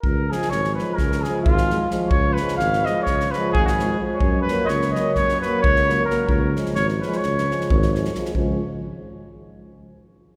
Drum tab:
SD |--ooooo-ooo--oo-o-|--ooooo-ooo--oo---|--o-ooo-ooo--oo-o-|--oooooooooo-ooooo|
BD |o-------o---o-----|o-------o---o-----|o-------o---o-----|o-----------o-----|

SD |------------------|
BD |o-----------------|